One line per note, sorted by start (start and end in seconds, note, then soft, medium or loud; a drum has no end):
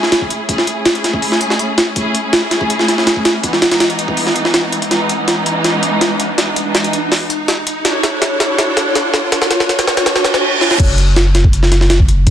0.00 0.47 A3 medium
0.00 0.47 C#4 medium
0.00 0.47 E4 medium
0.00 0.47 G#4 loud
0.00 snare soft
0.00 riser medium
0.12 snare loud
0.12 closed hi-hat medium
0.21 kick medium
0.30 closed hi-hat medium
0.49 0.75 A3 medium
0.49 0.75 C#4 medium
0.49 0.75 E4 medium
0.49 0.75 G#4 medium
0.49 kick loud
0.49 closed hi-hat medium
0.58 snare soft
0.67 closed hi-hat medium
0.77 1.94 A3 medium
0.77 1.94 C#4 medium
0.77 1.94 E4 medium
0.77 1.94 G#4 loud
0.86 snare loud
0.86 closed hi-hat medium
0.95 closed hi-hat soft
1.04 snare soft
1.04 closed hi-hat medium
1.14 kick medium
1.22 open hi-hat medium
1.32 snare soft
1.41 closed hi-hat medium
1.50 snare soft
1.59 closed hi-hat medium
1.78 snare loud
1.78 closed hi-hat medium
1.96 2.22 A3 medium
1.96 2.22 C#4 medium
1.96 2.21 E4 medium
1.96 2.22 G#4 loud
1.96 kick loud
1.96 closed hi-hat medium
2.15 closed hi-hat medium
2.24 3.41 A3 loud
2.24 3.41 C#4 medium
2.24 3.41 E4 medium
2.24 3.41 G#4 loud
2.33 snare loud
2.33 closed hi-hat medium
2.51 snare soft
2.51 closed hi-hat medium
2.61 kick medium
2.70 closed hi-hat medium
2.79 snare soft
2.88 snare soft
2.88 closed hi-hat medium
2.98 snare soft
3.07 snare loud
3.07 closed hi-hat medium
3.16 kick medium
3.25 snare loud
3.25 closed hi-hat medium
3.43 3.69 E3 medium
3.43 3.69 G#3 medium
3.43 3.69 B3 medium
3.43 3.69 D#4 medium
3.43 kick loud
3.43 closed hi-hat medium
3.53 snare soft
3.62 snare loud
3.62 closed hi-hat medium
3.71 4.88 E3 medium
3.71 4.89 G#3 medium
3.71 4.89 B3 medium
3.71 4.88 D#4 loud
3.71 snare loud
3.71 closed hi-hat medium
3.80 snare loud
3.80 closed hi-hat medium
3.90 closed hi-hat soft
3.99 closed hi-hat medium
4.08 kick medium
4.17 open hi-hat medium
4.27 snare soft
4.36 closed hi-hat medium
4.45 snare soft
4.54 snare loud
4.54 closed hi-hat medium
4.72 closed hi-hat medium
4.82 closed hi-hat soft
4.90 5.16 E3 medium
4.90 5.16 G#3 medium
4.90 5.16 B3 medium
4.90 5.16 D#4 loud
4.90 snare soft
4.90 closed hi-hat medium
5.09 closed hi-hat medium
5.19 6.36 E3 loud
5.19 6.36 G#3 medium
5.19 6.36 B3 medium
5.19 6.36 D#4 loud
5.28 snare soft
5.28 closed hi-hat medium
5.46 closed hi-hat medium
5.64 snare medium
5.64 closed hi-hat medium
5.83 closed hi-hat medium
6.01 snare medium
6.01 closed hi-hat medium
6.20 closed hi-hat medium
6.37 6.63 E3 medium
6.37 6.63 G#3 medium
6.37 6.63 B3 medium
6.37 6.63 D#4 medium
6.37 snare medium
6.37 closed hi-hat medium
6.56 closed hi-hat medium
6.65 7.10 E3 medium
6.65 7.10 G#3 medium
6.65 7.10 B3 medium
6.65 7.10 D#4 loud
6.75 snare medium
6.75 closed hi-hat medium
6.84 closed hi-hat soft
6.93 closed hi-hat medium
7.12 snare medium
7.12 open hi-hat medium
7.30 closed hi-hat medium
7.48 snare medium
7.48 closed hi-hat medium
7.67 closed hi-hat medium
7.84 8.10 D4 medium
7.84 8.10 F#4 medium
7.84 8.10 A4 medium
7.84 8.10 C#5 loud
7.84 snare medium
7.84 closed hi-hat medium
8.03 snare medium
8.03 closed hi-hat medium
8.12 9.30 D4 loud
8.12 9.30 F#4 medium
8.12 9.30 A4 medium
8.12 9.30 C#5 loud
8.22 snare medium
8.22 closed hi-hat medium
8.40 snare medium
8.40 closed hi-hat medium
8.58 snare medium
8.58 closed hi-hat medium
8.77 snare medium
8.77 closed hi-hat medium
8.95 snare medium
8.95 closed hi-hat medium
9.14 snare medium
9.32 9.58 D4 medium
9.32 9.58 F#4 medium
9.32 9.58 A4 medium
9.32 9.58 C#5 medium
9.32 snare medium
9.32 closed hi-hat medium
9.42 snare medium
9.51 snare loud
9.51 closed hi-hat medium
9.60 10.59 D4 medium
9.60 10.59 F#4 medium
9.60 10.59 A4 medium
9.60 10.59 C#5 loud
9.60 snare medium
9.69 snare medium
9.69 closed hi-hat medium
9.79 snare medium
9.79 closed hi-hat medium
9.88 snare loud
9.97 snare medium
9.97 closed hi-hat medium
10.06 snare loud
10.06 closed hi-hat medium
10.06 reverse cymbal medium
10.16 snare medium
10.24 snare loud
10.24 closed hi-hat medium
10.34 snare medium
10.61 10.77 D4 loud
10.61 10.77 F#4 medium
10.61 10.77 A4 loud
10.61 10.77 C#5 loud
10.61 snare medium
10.71 snare medium
10.79 12.30 F#1 loud
10.79 kick loud
10.79 closed hi-hat medium
10.79 crash loud
10.98 closed hi-hat medium
11.16 snare loud
11.16 closed hi-hat medium
11.35 snare soft
11.35 closed hi-hat medium
11.44 kick medium
11.53 closed hi-hat medium
11.63 snare soft
11.72 snare soft
11.72 closed hi-hat medium
11.81 snare soft
11.90 snare loud
11.90 closed hi-hat medium
12.00 kick medium
12.08 closed hi-hat medium
12.27 kick loud
12.27 closed hi-hat medium